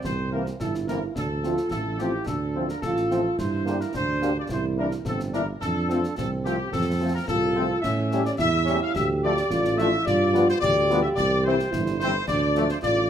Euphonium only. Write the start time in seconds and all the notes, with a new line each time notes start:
Already playing: C4
0.60 E4
1.16 D4
1.45 F4
1.72 E4
2.27 D4
2.85 F4
3.38 E4
3.95 D4
4.51 E4
5.07 C4
5.62 D4
6.18 C4
6.72 C4
7.28 F4
7.84 C#4
8.39 E4
8.95 G4
9.51 F4
9.80 E4
10.07 F4
10.61 G4
11.72 E4
12.27 D4
12.82 F4